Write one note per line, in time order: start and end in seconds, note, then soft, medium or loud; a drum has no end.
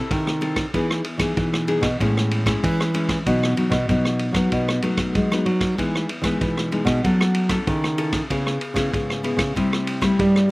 0.00 0.36 C4 medium
0.00 0.36 E4 medium
0.00 0.36 A4 medium
0.11 0.71 C3 medium
0.11 0.64 D#3 loud
0.11 kick medium
0.11 ride soft
0.27 cross-stick medium
0.41 0.68 C4 medium
0.41 0.68 E4 medium
0.41 0.68 A4 medium
0.41 ride soft
0.56 kick medium
0.56 cross-stick medium
0.56 ride soft
0.74 1.34 E3 medium
0.74 1.01 E3 medium
0.74 1.03 B3 medium
0.74 1.04 D#4 medium
0.74 1.04 G#4 medium
0.74 kick medium
0.74 ride soft
0.91 cross-stick medium
1.04 ride soft
1.18 1.33 E3 medium
1.18 1.63 B3 medium
1.18 1.63 D#4 medium
1.18 1.63 G#4 medium
1.18 kick medium
1.18 cross-stick medium
1.18 ride soft
1.37 1.97 B2 medium
1.37 1.77 E3 medium
1.37 kick medium
1.37 ride soft
1.54 cross-stick medium
1.67 1.87 B3 medium
1.67 1.87 D#4 medium
1.67 1.87 G#4 medium
1.67 ride soft
1.81 1.96 B2 medium
1.81 kick medium
1.81 cross-stick medium
1.81 ride medium
2.00 2.60 A2 medium
2.00 2.54 A2 medium
2.00 2.42 G#3 medium
2.00 2.43 C#4 medium
2.00 2.43 E4 medium
2.00 kick medium
2.00 ride soft
2.17 cross-stick medium
2.31 ride medium
2.46 2.89 G#3 medium
2.46 2.89 C#4 medium
2.46 2.89 E4 medium
2.46 kick medium
2.46 cross-stick medium
2.46 ride medium
2.64 3.17 E3 loud
2.64 3.23 E3 medium
2.64 kick medium
2.64 ride soft
2.80 cross-stick medium
2.94 3.21 G#3 medium
2.94 3.21 C#4 medium
2.94 3.21 E4 medium
2.94 ride soft
3.09 kick medium
3.09 cross-stick medium
3.09 ride soft
3.26 3.53 B2 medium
3.26 3.87 B2 soft
3.26 3.53 F#3 soft
3.26 3.53 B3 medium
3.26 3.53 D#4 medium
3.26 kick medium
3.26 ride medium
3.43 cross-stick medium
3.57 3.76 F#3 medium
3.57 3.76 B3 medium
3.57 3.76 D#4 medium
3.57 ride soft
3.70 3.85 B2 medium
3.70 kick medium
3.70 cross-stick medium
3.70 ride soft
3.89 4.29 B2 medium
3.89 4.34 F#3 medium
3.89 4.32 B3 medium
3.89 4.32 D#4 medium
3.89 kick medium
3.89 ride soft
4.05 cross-stick medium
4.19 ride soft
4.33 4.48 F#3 medium
4.33 4.78 F#3 medium
4.33 4.78 B3 medium
4.33 4.78 D#4 medium
4.33 kick medium
4.33 cross-stick medium
4.33 ride soft
4.52 4.79 B2 medium
4.52 5.12 B2 medium
4.52 kick medium
4.52 ride soft
4.68 cross-stick medium
4.82 5.14 F#3 medium
4.82 5.12 A3 medium
4.82 5.26 B3 medium
4.82 5.26 D#4 medium
4.82 ride soft
4.97 kick medium
4.97 cross-stick medium
4.97 ride soft
5.15 5.31 F#3 medium
5.15 5.44 G#3 medium
5.15 kick medium
5.15 ride soft
5.32 5.74 F#3 medium
5.32 5.74 B3 medium
5.32 5.74 D#4 medium
5.32 cross-stick medium
5.46 5.74 F#3 medium
5.46 ride soft
5.61 kick medium
5.61 cross-stick medium
5.61 ride soft
5.78 6.38 E3 soft
5.78 6.05 E3 medium
5.78 6.08 G#3 soft
5.78 6.08 B3 medium
5.78 6.08 D#4 medium
5.78 kick medium
5.78 ride soft
5.95 cross-stick medium
6.09 ride soft
6.22 6.37 E3 medium
6.22 6.67 G#3 medium
6.22 6.67 B3 medium
6.22 6.67 D#4 medium
6.22 kick medium
6.22 cross-stick medium
6.22 ride soft
6.41 7.01 B2 medium
6.41 6.81 E3 medium
6.41 kick medium
6.41 ride soft
6.57 cross-stick medium
6.72 6.99 G#3 soft
6.72 6.99 B3 soft
6.72 6.99 D#4 medium
6.72 ride soft
6.85 7.00 B2 medium
6.85 kick medium
6.85 cross-stick medium
6.85 ride soft
7.04 7.64 F#3 medium
7.04 7.58 F#3 medium
7.04 7.47 C#4 medium
7.04 7.47 E4 medium
7.04 7.47 A4 medium
7.04 kick medium
7.04 ride soft
7.21 cross-stick medium
7.35 ride medium
7.49 7.93 C#4 medium
7.49 7.93 E4 medium
7.49 7.93 A4 medium
7.49 kick medium
7.49 cross-stick medium
7.49 ride medium
7.67 8.27 C#3 medium
7.67 8.21 D#3 loud
7.67 kick medium
7.67 ride soft
7.84 cross-stick medium
7.98 8.25 C#4 medium
7.98 8.25 E4 medium
7.98 8.25 A4 medium
7.98 ride medium
8.13 kick medium
8.13 cross-stick medium
8.13 ride soft
8.30 8.57 C#3 medium
8.30 8.90 C#3 medium
8.30 8.60 B3 medium
8.30 8.60 E4 medium
8.30 8.60 G#4 medium
8.30 kick medium
8.30 ride medium
8.47 cross-stick medium
8.61 ride soft
8.74 8.89 C#3 medium
8.74 9.19 B3 medium
8.74 9.19 E4 medium
8.74 9.19 G#4 medium
8.74 kick medium
8.74 cross-stick medium
8.74 ride medium
8.93 9.53 G#2 medium
8.93 9.34 C#3 medium
8.93 kick medium
8.93 ride soft
9.10 cross-stick medium
9.23 9.50 B3 soft
9.23 9.51 E4 medium
9.23 9.51 G#4 medium
9.23 ride soft
9.37 9.52 C#3 medium
9.37 kick medium
9.37 cross-stick medium
9.37 ride medium
9.55 10.16 C3 medium
9.55 10.10 C3 medium
9.55 9.98 G3 medium
9.55 9.98 A3 medium
9.55 9.99 E4 medium
9.55 kick medium
9.55 ride soft
9.73 cross-stick medium
9.87 ride medium
10.01 10.45 G3 medium
10.01 10.45 A3 medium
10.01 10.45 E4 medium
10.01 kick medium
10.01 cross-stick medium
10.01 ride soft
10.19 10.51 G2 medium
10.19 10.51 G3 loud
10.19 kick medium
10.19 ride soft
10.36 cross-stick medium